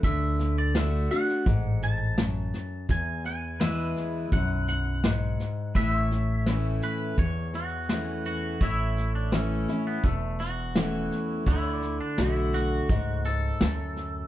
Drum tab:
HH |----p-------p---|----p-------p---|----p-------p---|----p-------p---|
SD |o-o-o-ooo-o-o-o-|o-o-o-o-o-o-o-o-|o-o-o-o-o-o-o-o-|o-o-o-o-o-o-o-o-|
BD |o-------o-------|o-------o-------|o-------o-------|o-------o-------|

HH |----p-------p---|
SD |o-o-o-o-o-o-o-o-|
BD |o-------o-------|